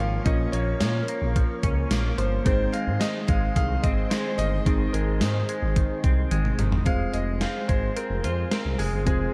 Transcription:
Already playing: fm electric piano A#3 C#4 F4 A#4 C#5, clean electric guitar A#3 C#4, string machine A#4 C#5 F5 C#6, grand piano F5
0.00 analog synth bass G#1, clean electric guitar F3
0.25 analog synth bass A#1, clean electric guitar F3 C#4, fm electric piano A#3 C#4 F4 A#4 C#5, grand piano D#5, kick, closed hi-hat
0.52 analog synth bass A#1, clean electric guitar A#3, grand piano C#5, closed hi-hat
0.80 analog synth bass A#2, clean electric guitar F3, grand piano C#5, snare, closed hi-hat, tambourine
1.08 clean electric guitar A#3, closed hi-hat
1.22 analog synth bass A#1
1.36 clean electric guitar F3, kick, closed hi-hat
1.63 analog synth bass C#2, clean electric guitar C#4, kick, closed hi-hat
1.91 analog synth bass A#1, clean electric guitar A#3, snare, closed hi-hat, tambourine
2.18 analog synth bass G1, clean electric guitar F3, grand piano C5, closed hi-hat
2.45 analog synth bass G#1, clean electric guitar D#3 C4, fm electric piano G#3 C4 D#4 G#4 C5, string machine G#4 C5 D#5 C6, grand piano C5, kick, closed hi-hat
2.72 clean electric guitar G#3, grand piano F5, closed hi-hat
2.87 analog synth bass G#2
3.00 clean electric guitar D#3, grand piano D#5, snare, closed hi-hat, tambourine
3.27 analog synth bass G#1, clean electric guitar G#3, grand piano F5, kick, closed hi-hat
3.56 analog synth bass C2, clean electric guitar D#3, grand piano F5, kick, closed hi-hat
3.83 analog synth bass G#1, clean electric guitar C4, grand piano D#5, kick, closed hi-hat
4.10 clean electric guitar G#3, grand piano C5, snare, closed hi-hat, tambourine
4.38 analog synth bass G1, clean electric guitar D#3, grand piano D#5, closed hi-hat
4.65 analog synth bass G#1, clean electric guitar D#3 C4, fm electric piano G#3 C4 D#4 G#4 D#5, kick, closed hi-hat
4.93 analog synth bass G#1, clean electric guitar G#3, grand piano A#4, closed hi-hat
5.21 analog synth bass G#2, clean electric guitar D#3, grand piano C5, snare, closed hi-hat, tambourine
5.49 clean electric guitar G#3, closed hi-hat
5.62 analog synth bass G#1
5.76 clean electric guitar D#3, kick, closed hi-hat
6.04 analog synth bass C2, clean electric guitar C4, kick, closed hi-hat
6.31 analog synth bass G#1, clean electric guitar G#3, closed hi-hat, high tom
6.45 mid tom
6.59 analog synth bass G1, clean electric guitar D#3, closed hi-hat, mid tom
6.72 floor tom
6.85 analog synth bass F1, clean electric guitar G#3, fm electric piano C4 F4 G#4 C5, string machine G#4 C5 F5 C6, grand piano F5, kick, closed hi-hat
7.13 analog synth bass F1, clean electric guitar G#3, grand piano D#5, closed hi-hat
7.41 clean electric guitar C4, grand piano F5, snare, closed hi-hat
7.68 analog synth bass G#1, clean electric guitar G#3, grand piano C5, kick, closed hi-hat
7.96 clean electric guitar C4, grand piano A#4, closed hi-hat
8.10 analog synth bass F1
8.24 analog synth bass F2, clean electric guitar F4, grand piano C5, closed hi-hat
8.51 clean electric guitar C4, grand piano A#4, snare, closed hi-hat
8.65 analog synth bass C2
8.78 analog synth bass F1, clean electric guitar G#3, grand piano G#4, open hi-hat
8.93 analog synth bass G1
9.05 analog synth bass F1, clean electric guitar G#3, fm electric piano C4 F4 G#4 C5, grand piano G#4, kick, closed hi-hat

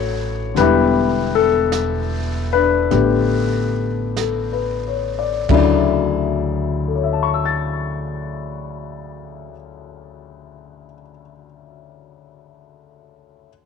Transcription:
Already playing: upright bass A1, grand piano E3 F#3 A3 C#4 D4 E4 F#4 C#5
0.54 upright bass E1, grand piano D3 G3 B3 B4, brush sweep, snare
0.60 grand piano E4 G4
1.35 grand piano A4
1.72 brush sweep, snare, hi-hat pedal
2.53 grand piano D4 B4
2.90 upright bass A1, grand piano D3 A3 B3 G4, brush sweep, snare
4.17 grand piano A4, brush sweep, snare, hi-hat pedal
4.53 grand piano B4
4.88 grand piano C#5
5.19 grand piano D5
5.49 grand piano D2 C#3 D3 F#3 E4, upright bass D2, kick, floor tom, china
5.54 grand piano D5
6.88 grand piano A4
6.95 grand piano C#5
7.04 grand piano E5
7.13 grand piano A5
7.23 grand piano C#6
7.34 grand piano E6
7.45 grand piano A6

